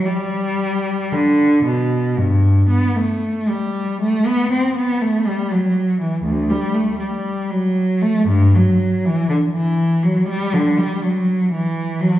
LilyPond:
\new Staff \with { instrumentName = "Cello" } { \clef bass \time 4/4 \key g \major \tempo 4 = 60 g4 d8 b,8 g,8 b16 a8 g8 a16 | b16 c'16 b16 a16 g16 fis8 e16 d,16 g16 a16 g8 fis8 a16 | g,16 fis8 e16 d16 e8 fis16 g16 d16 g16 fis8 e8 fis16 | }